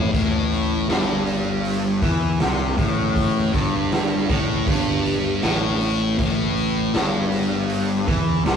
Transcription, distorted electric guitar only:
0.00 0.11 A2 loud
0.12 0.87 A2 loud
0.89 2.01 G2 loud
2.02 2.38 E3 medium
2.40 2.77 C3 loud
2.77 3.52 A2 loud
3.53 4.28 G2 loud
4.29 4.66 A2 loud
4.67 5.42 G2 loud
5.42 6.17 A2 loud
6.18 6.93 A2 loud
6.94 8.07 G2 loud
8.07 8.44 E3 medium
8.45 8.56 C3 loud

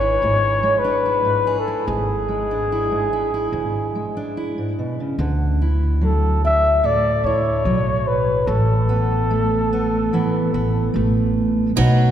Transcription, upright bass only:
0.00 0.19 G#1 medium
0.23 0.60 G#1 medium
1.88 3.49 G#1 medium
3.52 3.90 G#1 medium
5.19 6.79 D2 medium
7.24 7.61 D2 medium
7.65 8.44 B1 medium
8.47 10.08 A1 medium
10.54 10.90 A1 medium
10.96 11.73 A1 medium
11.78 12.11 B1 medium

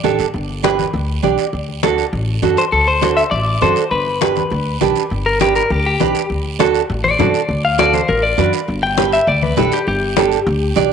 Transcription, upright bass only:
0.04 0.18 A1 medium
0.19 0.33 G1 medium
0.34 0.82 G1 medium
0.94 1.17 D2 loud
1.24 1.35 B1 medium
1.53 2.01 D2 medium
2.13 2.37 A1 loud
2.42 2.54 F#2 medium
2.72 3.20 D2 medium
3.32 3.56 A1 loud
3.62 3.74 F#2 medium
3.91 4.39 G1 medium
4.51 4.75 D2 medium
4.81 4.93 B1 medium
5.11 5.59 G1 medium
5.70 5.94 D2 loud
6.01 6.12 B1 medium
6.30 6.78 D2 medium
6.90 7.13 A1 loud
7.19 7.31 F#2 medium
7.49 7.96 D2 medium
8.09 8.32 A1 loud
8.38 8.50 F#2 medium
8.68 9.16 G1 medium
9.27 9.51 D2 loud
9.57 9.69 B1 medium
9.87 10.35 G1 medium
10.47 10.71 D2 loud
10.76 10.88 B1 medium

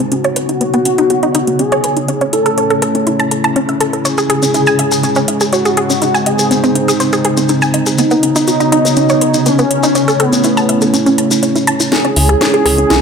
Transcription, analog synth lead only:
0.12 1.61 F#4 loud
1.59 2.23 G#4 loud
2.33 2.97 A4 loud
4.05 5.43 G#4 loud
5.53 6.28 F#4 loud
6.26 6.91 G#4 loud
7.99 9.48 D#4 loud
9.46 10.21 C#4 loud
10.20 10.84 B3 loud
11.92 13.02 G#4 loud

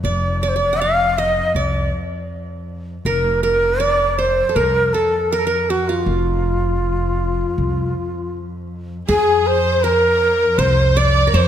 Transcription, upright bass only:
0.04 1.39 F1 medium
1.54 1.89 C2 medium
3.05 4.41 F1 medium
4.56 4.90 C2 medium
6.06 7.42 F1 medium
7.58 7.92 C2 medium
9.09 10.44 F2 medium
10.58 11.26 C2 loud
11.33 11.48 F2 medium

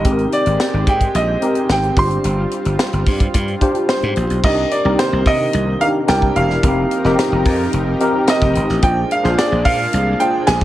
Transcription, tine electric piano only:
0.04 0.94 C4 medium
0.04 0.94 D#4 medium
0.04 0.95 G4 medium
0.04 0.12 G#4 medium
0.12 0.98 A#4 medium
1.42 1.97 C4 medium
1.42 1.97 D#4 medium
1.42 1.96 G4 medium
1.42 1.97 A#4 medium
1.97 2.86 D4 medium
1.97 2.86 F4 medium
1.97 2.87 G4 medium
1.97 2.87 C5 medium
3.61 4.28 D4 medium
3.61 4.29 F4 medium
3.61 4.29 G4 medium
3.61 4.29 C5 loud
4.44 4.77 D4 medium
4.44 4.78 D#4 medium
4.44 4.78 G4 medium
4.44 4.78 A#4 medium
4.84 5.63 C4 medium
4.84 5.63 D#4 medium
4.84 5.63 G4 medium
4.84 5.64 A#4 medium
5.80 6.06 D4 medium
5.80 6.08 D#4 medium
5.80 6.07 G4 medium
5.80 6.07 A#4 medium
6.07 6.53 D4 medium
6.07 6.53 E4 medium
6.07 6.53 G4 medium
6.07 6.53 A#4 medium
6.63 6.97 C4 medium
6.63 6.97 D#4 medium
6.63 6.97 G4 medium
6.63 6.97 A#4 medium
7.05 7.83 C4 medium
7.05 7.83 D#4 medium
7.05 7.83 G4 medium
7.05 7.84 A#4 loud
8.00 8.68 C4 medium
8.00 8.68 D#4 medium
8.00 8.68 G4 medium
8.00 8.68 A#4 loud
8.82 9.16 D4 medium
8.82 9.16 F4 medium
8.82 9.17 G#4 medium
8.82 9.17 C5 medium
9.23 10.02 D4 medium
9.23 10.02 F4 medium
9.23 10.03 G#4 medium
9.23 10.03 C5 medium
10.20 10.64 D4 medium
10.20 10.64 F4 medium
10.20 10.64 G#4 medium
10.20 10.64 C5 medium

